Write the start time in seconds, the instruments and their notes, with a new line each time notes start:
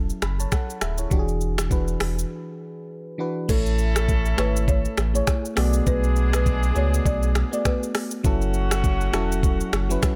Already playing: sub bass E1, fm electric piano F#3 C#4 E4 A4
0.10 shaker
0.22 sub bass F#1, fm electric piano B5, finger snap, cross-stick, shaker
0.40 fm electric piano C#5 A5, shaker
0.52 fm electric piano A4 F#5, finger snap, kick, cross-stick, shaker
0.70 shaker
0.81 sub bass D1, fm electric piano G#4 E5, finger snap, cross-stick, shaker
0.98 fm electric piano E4 C#5, shaker
1.10 sub bass E1, fm electric piano E3 D4 F#4 G4, kick, shaker
1.19 fm electric piano G#4
1.28 shaker
1.41 shaker
1.58 finger snap, cross-stick, shaker
1.70 fm electric piano E3 D4 F#4 B4, kick, shaker
1.88 shaker
2.00 sub bass E1, finger snap, cross-stick, open hi-hat, shaker
2.19 shaker
3.18 fm electric piano E3 D4 F#4 B4
3.48 sub bass A1, fm electric piano A3 E4 A4 C#5, horn section A3 C#4 E4 A4, marimba A4, kick, crash, shaker
3.66 shaker
3.79 shaker
3.96 marimba A4, finger snap, cross-stick, shaker
4.09 kick, shaker
4.25 shaker
4.37 sub bass G#1, fm electric piano A3 E4 A4 C#5, marimba B4, finger snap, cross-stick, shaker
4.56 shaker
4.68 marimba C#5, kick, shaker
4.85 shaker
4.97 sub bass A1, finger snap, cross-stick, shaker
5.14 fm electric piano A3 E4 G#4 C#5, marimba C#5, shaker
5.27 finger snap, kick, cross-stick, shaker
5.45 shaker
5.56 sub bass B1, horn section G#3 B3 D4 G#4, fm electric piano A3 B3 F#4 D5, finger snap, cross-stick, open hi-hat, shaker
5.73 shaker
5.87 sub bass B1, marimba B4, kick, shaker
6.04 shaker
6.16 shaker
6.33 marimba B4, finger snap, cross-stick, shaker
6.46 kick, shaker
6.63 shaker
6.75 sub bass C#2, fm electric piano A3 B3 F#4 D5, marimba C#5, shaker
6.94 shaker
7.06 sub bass B1, marimba D5, kick, shaker
7.23 shaker
7.35 finger snap, cross-stick, shaker
7.51 fm electric piano A3 B3 F#4 D5, marimba D5, shaker
7.65 marimba B4, finger snap, kick, cross-stick, shaker
7.83 shaker
7.95 finger snap, cross-stick, open hi-hat, shaker
8.11 shaker
8.23 sub bass F#1, fm electric piano F#3 C#4 E4 A4, horn section F#3 A3 C#4 F#4, kick, shaker
8.42 shaker
8.54 shaker
8.71 finger snap, cross-stick, shaker
8.84 kick, shaker
9.01 shaker
9.12 sub bass E1, fm electric piano F#3 C#4 E4 A4, finger snap, cross-stick, shaker
9.32 shaker
9.43 kick, shaker
9.60 shaker
9.73 sub bass F#1, finger snap, cross-stick, shaker
9.89 fm electric piano F#3 C#4 E4 B4, shaker
10.02 finger snap, kick, cross-stick, shaker